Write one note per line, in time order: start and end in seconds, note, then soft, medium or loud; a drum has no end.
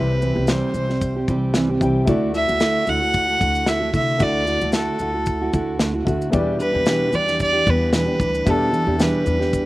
0.00 0.33 C2 loud
0.00 0.21 C3 medium
0.00 0.20 E3 medium
0.00 0.20 G3 medium
0.00 0.21 C4 medium
0.00 1.76 C4 medium
0.00 1.77 E4 medium
0.00 0.22 G4 medium
0.00 1.77 G4 medium
0.00 0.51 B4 medium
0.00 1.78 E5 medium
0.21 0.36 E3 medium
0.21 0.36 G3 medium
0.21 0.35 C4 medium
0.21 0.34 G4 medium
0.21 shaker soft
0.35 0.60 C2 medium
0.35 0.47 G3 soft
0.35 0.47 C4 soft
0.35 0.47 G4 medium
0.47 0.74 C3 medium
0.47 0.72 E3 medium
0.47 0.73 G3 medium
0.47 0.74 C4 medium
0.47 0.74 G4 medium
0.47 1.28 C5 medium
0.47 snare loud
0.47 shaker medium
0.74 1.24 C2 medium
0.74 0.89 E3 medium
0.74 0.89 G3 medium
0.74 0.88 C4 medium
0.74 0.88 G4 medium
0.74 shaker soft
0.89 1.17 G3 soft
0.89 1.16 C4 soft
0.89 1.15 G4 medium
0.89 snare soft
1.01 kick medium
1.01 shaker medium
1.16 1.28 G3 soft
1.16 1.29 C4 soft
1.16 1.28 G4 medium
1.28 1.77 C2 medium
1.28 1.54 E3 medium
1.28 1.55 G3 medium
1.28 1.55 C4 medium
1.28 1.55 G4 medium
1.28 kick medium
1.28 shaker medium
1.54 1.69 C3 medium
1.54 1.69 E3 medium
1.54 1.70 G3 medium
1.54 1.70 C4 medium
1.54 1.69 G4 medium
1.54 snare loud
1.54 shaker medium
1.70 1.81 G3 soft
1.70 1.82 C4 medium
1.70 1.81 G4 medium
1.79 2.06 C2 medium
1.79 2.07 E3 medium
1.79 2.08 G3 medium
1.79 2.07 C4 medium
1.79 2.08 C4 medium
1.79 2.04 E4 medium
1.79 2.08 G4 medium
1.79 2.08 G5 medium
1.79 kick medium
1.79 shaker soft
1.84 2.09 G4 medium
2.05 2.45 D2 loud
2.05 2.33 D3 medium
2.05 4.15 A3 medium
2.05 2.33 A3 medium
2.05 4.16 E4 medium
2.05 2.34 E4 medium
2.05 4.16 F#4 medium
2.05 4.17 D5 medium
2.05 kick loud
2.05 shaker medium
2.09 2.35 F#4 medium
2.34 2.49 D3 medium
2.34 2.49 A3 medium
2.34 2.48 E4 medium
2.34 2.47 F#4 medium
2.34 2.91 E5 loud
2.34 shaker soft
2.48 2.73 D2 medium
2.48 2.59 A3 soft
2.48 2.60 E4 soft
2.48 2.60 F#4 medium
2.48 shaker medium
2.60 2.85 D3 medium
2.60 2.86 A3 medium
2.60 2.87 E4 medium
2.60 2.88 F#4 medium
2.60 snare loud
2.60 shaker medium
2.87 3.37 D2 medium
2.87 3.02 D3 medium
2.87 3.02 A3 medium
2.87 3.02 E4 medium
2.87 3.00 F#4 medium
2.87 3.69 F#5 loud
2.87 shaker soft
3.01 3.29 A3 soft
3.01 3.28 E4 soft
3.01 3.26 F#4 medium
3.14 kick medium
3.14 shaker medium
3.27 3.39 A3 soft
3.27 3.40 E4 soft
3.27 3.40 F#4 soft
3.39 3.90 D2 medium
3.39 3.65 D3 medium
3.39 3.66 A3 medium
3.39 3.66 E4 medium
3.39 3.67 F#4 medium
3.39 kick medium
3.39 shaker medium
3.55 shaker medium
3.66 3.81 D3 medium
3.66 3.81 A3 medium
3.66 3.80 E4 medium
3.66 3.79 F#4 medium
3.66 3.94 E5 medium
3.66 snare loud
3.66 shaker medium
3.80 3.92 A3 soft
3.80 3.93 E4 soft
3.80 3.93 F#4 soft
3.92 4.18 C2 medium
3.92 4.17 D3 medium
3.92 4.18 A3 medium
3.92 4.19 E4 medium
3.92 4.19 F#4 medium
3.92 4.24 E5 loud
3.92 kick medium
3.92 shaker soft
4.18 4.58 D2 medium
4.18 4.45 D3 medium
4.18 6.02 A3 medium
4.18 4.46 A3 medium
4.18 6.02 E4 medium
4.18 4.47 E4 medium
4.18 4.47 F#4 medium
4.18 6.03 F#4 medium
4.18 kick medium
4.18 shaker medium
4.22 4.74 D5 medium
4.22 6.04 E5 medium
4.46 4.61 D3 soft
4.46 4.62 A3 medium
4.46 4.61 E4 medium
4.46 4.59 F#4 medium
4.46 shaker soft
4.61 4.86 D2 medium
4.61 4.73 A3 soft
4.61 4.73 E4 soft
4.61 4.73 F#4 soft
4.61 shaker medium
4.72 4.98 D3 medium
4.72 5.00 A3 medium
4.72 5.00 E4 medium
4.72 5.01 F#4 medium
4.72 5.77 A4 medium
4.72 snare loud
4.72 shaker medium
4.99 5.49 D2 medium
4.99 5.14 D3 medium
4.99 5.15 A3 medium
4.99 5.14 E4 medium
4.99 5.13 F#4 medium
4.99 shaker soft
5.14 5.42 A3 soft
5.14 5.42 E4 soft
5.14 5.40 F#4 soft
5.26 kick medium
5.26 shaker medium
5.42 5.52 A3 soft
5.42 5.53 E4 medium
5.42 5.54 F#4 medium
5.52 6.03 D2 medium
5.52 5.78 D3 medium
5.52 5.79 A3 medium
5.52 5.79 E4 medium
5.52 5.79 F#4 medium
5.52 kick medium
5.52 shaker medium
5.79 5.94 D3 medium
5.79 5.94 A3 medium
5.79 5.93 E4 medium
5.79 5.92 F#4 medium
5.79 snare loud
5.79 shaker medium
5.93 6.05 A3 soft
5.93 6.05 E4 soft
5.93 6.06 F#4 medium
6.05 6.31 D2 medium
6.05 6.32 D3 medium
6.05 6.32 A3 medium
6.05 6.30 E4 soft
6.05 6.32 E4 medium
6.05 6.33 F#4 soft
6.05 6.32 F#4 medium
6.05 6.33 E5 medium
6.05 kick medium
6.05 shaker soft
6.22 shaker soft
6.30 6.59 E2 medium
6.30 6.71 E2 loud
6.30 6.59 B2 medium
6.30 6.57 E3 medium
6.30 6.58 G3 medium
6.30 8.41 B3 medium
6.30 6.58 D4 medium
6.30 8.41 E4 medium
6.30 6.59 G4 medium
6.30 8.42 G4 medium
6.30 kick loud
6.30 shaker medium
6.34 8.43 D5 medium
6.58 6.74 E3 medium
6.58 6.74 G3 medium
6.58 6.73 D4 medium
6.58 6.72 G4 medium
6.58 7.17 B4 loud
6.58 shaker soft
6.73 6.99 E2 medium
6.73 6.85 E3 soft
6.73 6.86 G3 soft
6.73 6.85 D4 soft
6.73 6.86 G4 soft
6.85 7.13 E2 medium
6.85 7.13 B2 medium
6.85 7.10 E3 medium
6.85 7.11 G3 medium
6.85 7.12 D4 medium
6.85 7.12 G4 medium
6.85 snare loud
6.85 shaker medium
7.11 7.62 E2 medium
7.11 7.27 E3 medium
7.11 7.27 G3 medium
7.11 7.27 D4 medium
7.11 7.25 G4 medium
7.11 shaker soft
7.15 7.41 D5 medium
7.27 7.54 E3 soft
7.27 7.53 G3 soft
7.27 7.53 D4 soft
7.27 7.52 G4 medium
7.27 snare soft
7.27 shaker medium
7.40 7.71 D5 medium
7.40 kick medium
7.40 shaker medium
7.53 7.64 E3 soft
7.53 7.65 G3 soft
7.53 7.66 D4 medium
7.53 7.66 G4 medium
7.66 8.16 E2 loud
7.66 7.92 E3 medium
7.66 7.92 G3 medium
7.66 7.92 D4 medium
7.66 7.92 G4 medium
7.66 7.95 B4 medium
7.66 kick medium
7.66 shaker soft
7.92 8.07 E2 medium
7.92 8.07 B2 medium
7.92 8.07 E3 medium
7.92 8.07 G3 medium
7.92 8.06 D4 medium
7.92 8.05 G4 medium
7.92 8.51 B4 medium
7.92 snare loud
7.92 shaker medium
8.06 8.18 E3 soft
8.06 8.19 G3 soft
8.06 8.19 D4 soft
8.06 8.19 G4 medium
8.19 8.44 D2 medium
8.19 8.46 E3 medium
8.19 8.46 G3 medium
8.19 8.47 D4 medium
8.19 8.47 G4 medium
8.19 kick medium
8.19 shaker soft
8.35 shaker soft
8.44 8.73 E2 medium
8.44 8.84 E2 loud
8.44 8.73 B2 medium
8.44 8.70 E3 medium
8.44 8.71 G3 medium
8.44 9.66 B3 medium
8.44 8.72 D4 medium
8.44 9.66 E4 medium
8.44 9.66 G4 medium
8.44 8.73 G4 medium
8.44 kick loud
8.44 shaker medium
8.48 9.66 A4 medium
8.48 9.04 A4 medium
8.71 8.87 E3 medium
8.71 8.87 G3 medium
8.71 8.86 D4 medium
8.71 8.86 G4 medium
8.71 shaker soft
8.87 9.12 E2 medium
8.87 8.97 E3 soft
8.87 8.98 G3 soft
8.87 8.98 D4 soft
8.87 8.98 G4 soft
8.98 9.26 E2 medium
8.98 9.26 B2 medium
8.98 9.24 E3 medium
8.98 9.25 G3 medium
8.98 9.26 D4 medium
8.98 9.26 G4 medium
8.98 snare loud
8.98 shaker medium
9.02 9.66 B4 medium
9.25 9.66 E2 medium
9.25 9.40 E3 medium
9.25 9.41 G3 medium
9.25 9.39 D4 medium
9.25 9.39 G4 medium
9.25 shaker soft
9.40 9.66 E3 soft
9.40 9.66 G3 soft
9.40 9.65 D4 soft
9.40 9.64 G4 medium
9.40 snare soft
9.53 kick medium
9.53 shaker medium